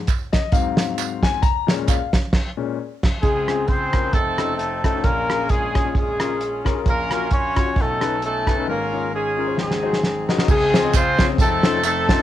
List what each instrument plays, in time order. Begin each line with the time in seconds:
0.07 kick, clap, closed hi-hat, tambourine
0.32 grand piano D#5, kick, snare, closed hi-hat, tambourine
0.52 grand piano G#2 F#3 C4 F5, kick, closed hi-hat, tambourine
0.77 snare, closed hi-hat, tambourine
0.98 clap, closed hi-hat, tambourine
1.23 grand piano G#5, kick, snare, closed hi-hat, tambourine
1.42 grand piano A#5, kick, closed hi-hat, tambourine
1.67 grand piano A#2 G#3 C#4, snare, closed hi-hat, tambourine
1.88 grand piano F5, kick, clap, closed hi-hat, tambourine
2.13 kick, snare, closed hi-hat, tambourine
2.33 kick, snare, crash
2.57 grand piano A#2 G#3 C#4
3.03 kick, snare, crash
3.23 grand piano C#2 C#3, horn section G#3 C4 F4 G#4, kick, closed hi-hat
3.48 grand piano C4 C#4 F4 G#4, cross-stick, closed hi-hat
3.68 horn section C4 F4 G#4 C5, kick, closed hi-hat
3.93 grand piano C4 C#4 F4 A#4, kick, cross-stick, closed hi-hat
4.03 grand piano C4 C#4 F4 A#4
4.13 grand piano F1 F2, horn section A3 C4 D#4 A4, kick, closed hi-hat
4.38 grand piano C#4 D#4 F4 A4, cross-stick, closed hi-hat
4.57 horn section A3 A4, closed hi-hat
4.84 horn section A3 A4, grand piano C#4 D#4 F4 A4, kick, cross-stick, closed hi-hat
4.94 grand piano C#4 D#4 F4 A4
5.03 grand piano A#1 A#2, horn section A#3 C#4 F4 A#4, kick, closed hi-hat
5.29 grand piano C#4 F4 G#4 A#4, cross-stick, closed hi-hat
5.49 horn section G#3 C#4 F4 G#4, kick, closed hi-hat
5.74 grand piano C#4 F4 G#4 C#5, kick, cross-stick, closed hi-hat
5.85 grand piano C#4 F4 G#4 C#5
5.95 horn section G#3 C#4 F4 G#4, kick, closed hi-hat
6.20 grand piano C#4 F4 G#4 A#4, cross-stick, closed hi-hat
6.41 closed hi-hat
6.65 grand piano C#4 F4 G#4 A#4, kick, cross-stick, closed hi-hat
6.75 grand piano C#4 F4 G#4 A#4
6.85 grand piano A#1 A#2, horn section A#3 C#4 F4 A#4, kick, closed hi-hat
7.10 grand piano C#4 F4 F#4 A#4, cross-stick, closed hi-hat
7.30 horn section C#4 F4 F#4 C#5, kick, closed hi-hat
7.56 grand piano C#4 F4 F#4 C#5, kick, cross-stick, closed hi-hat
7.66 grand piano C#4 F4 F#4 C#5
7.76 grand piano B1 B2, horn section C#4 D#4, kick, closed hi-hat
7.81 horn section A3 A4
8.01 grand piano C#4 D#4 A4 B4, cross-stick, closed hi-hat
8.22 horn section A3 C#4 D#4 A4, closed hi-hat
8.46 grand piano C#4 D#4 A4 B4, kick, cross-stick, closed hi-hat
8.57 grand piano C#4 D#4 A4 B4
8.67 grand piano G#1 G#2, horn section A#3 C#4 F4 A#4
8.93 grand piano C#4 F4 G#4 C#5
9.13 horn section G#3 C#4 F4 G#4
9.38 grand piano C#4 F4 G#4 A#4
9.47 grand piano C#4 F4 G#4 C5
9.57 grand piano G#1 G#2, horn section G#3 C4 D#4 G#4, snare
9.71 snare
9.83 grand piano D#4 F#4 G#4 C5
9.93 snare
10.03 snare
10.29 grand piano D#4 F#4 G#4 A#4, snare
10.39 grand piano D#4 F#4 G#4 A#4, snare
10.48 grand piano C#2 C#3, horn section G#3 C4 F4 G#4, kick, crash, tambourine
10.73 grand piano C4 C#4 F4 G#4 C5, snare, closed hi-hat, tambourine
10.84 grand piano C4 C#4 F4 G#4 D#5
10.93 horn section C4 F4 G#4 C5, kick, clap, closed hi-hat, tambourine
11.19 grand piano C4 C#4 F4 G#4 C#5, kick, snare, closed hi-hat, tambourine
11.29 grand piano C4 C#4 F4 G#4 C5
11.39 grand piano F1 F2, horn section A3 C4 D#4 A4, kick, closed hi-hat, tambourine
11.64 grand piano C#4 D#4 F4 A4 C5, snare, closed hi-hat, tambourine
11.84 horn section A3 C4 D#4 A4, clap, closed hi-hat, tambourine
12.08 grand piano C#4 D#4 F4 A4 C5, kick, snare, closed hi-hat, tambourine
12.18 grand piano C#4 D#4 F4 A4